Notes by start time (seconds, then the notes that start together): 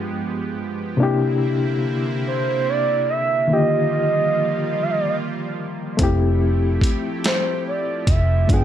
Already playing: G2 F3 G#3 B3 D4 F4 G4 G5
0.97 C3 D3 A#3 C4 D4 E4
1.01 A#3 E4 G4
2.27 C5
2.69 D5
3.10 E5
3.48 D3 D#3 F3 G3 A#3 F4
3.52 F4 G4 D#5
4.83 F5
4.90 D#5
5.00 D5
5.08 D#5
5.97 F1 F3 A3 C4 E4 G4, kick, closed hi-hat
6.02 E4 G4
6.81 muted fingered electric bass stroke, kick, closed hi-hat
7.24 C5, snare, closed hi-hat
7.67 D5
8.07 F1 E5, kick, closed hi-hat
8.47 G1 G3 G#3 B3 D4 F4, kick, closed hi-hat
8.52 B3 G#4 G5